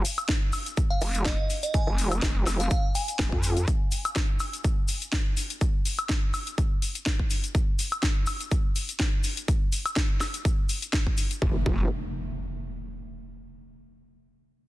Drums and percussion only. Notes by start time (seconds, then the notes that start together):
0.05 open hi-hat, shaker
0.18 closed hi-hat, high woodblock, shaker
0.28 kick, snare, closed hi-hat, shaker
0.53 open hi-hat, high woodblock, shaker
0.66 closed hi-hat, shaker
0.77 kick, closed hi-hat, shaker
1.01 open hi-hat, shaker
1.14 closed hi-hat, shaker
1.25 kick, snare, closed hi-hat, shaker
1.50 open hi-hat, shaker
1.63 closed hi-hat, shaker
1.74 kick, closed hi-hat, shaker
1.98 open hi-hat, shaker
2.12 closed hi-hat, high woodblock, shaker
2.22 kick, snare, closed hi-hat, shaker
2.46 snare, open hi-hat, high woodblock, shaker
2.60 closed hi-hat, shaker
2.70 kick, closed hi-hat, shaker
2.95 open hi-hat, shaker
3.08 closed hi-hat, shaker
3.19 kick, snare, closed hi-hat, shaker
3.32 kick
3.43 open hi-hat, shaker
3.57 closed hi-hat, shaker
3.68 kick, closed hi-hat, shaker
3.91 open hi-hat, shaker
4.05 closed hi-hat, high woodblock, shaker
4.16 kick, snare, closed hi-hat, shaker
4.40 open hi-hat, high woodblock, shaker
4.53 closed hi-hat, shaker
4.64 kick, closed hi-hat, shaker
4.88 open hi-hat, shaker
5.02 closed hi-hat, shaker
5.12 kick, snare, closed hi-hat, shaker
5.37 open hi-hat, shaker
5.50 closed hi-hat, shaker
5.61 kick, closed hi-hat, shaker
5.85 open hi-hat, shaker
5.98 closed hi-hat, high woodblock, shaker
6.09 kick, snare, closed hi-hat, shaker
6.34 open hi-hat, high woodblock, shaker
6.47 closed hi-hat, shaker
6.58 kick, closed hi-hat, shaker
6.82 open hi-hat, shaker
6.95 closed hi-hat, shaker
7.06 kick, snare, closed hi-hat, shaker
7.19 kick
7.30 open hi-hat, shaker
7.44 closed hi-hat, shaker
7.55 kick, closed hi-hat, shaker
7.79 open hi-hat, shaker
7.92 closed hi-hat, high woodblock, shaker
8.03 kick, snare, closed hi-hat, shaker
8.27 open hi-hat, high woodblock, shaker
8.40 closed hi-hat, shaker
8.51 kick, closed hi-hat, shaker
8.76 open hi-hat, shaker
8.89 closed hi-hat, shaker
8.99 kick, snare, closed hi-hat, shaker
9.24 open hi-hat, shaker
9.37 closed hi-hat, shaker
9.48 kick, closed hi-hat, shaker
9.72 open hi-hat, shaker
9.86 closed hi-hat, high woodblock, shaker
9.96 kick, snare, closed hi-hat, shaker
10.20 snare, open hi-hat, high woodblock, shaker
10.34 closed hi-hat, shaker
10.45 kick, closed hi-hat, shaker
10.69 open hi-hat, shaker
10.82 closed hi-hat, shaker
10.93 kick, snare, closed hi-hat, shaker
11.07 kick
11.17 open hi-hat, shaker
11.31 closed hi-hat, shaker
11.42 kick
11.66 kick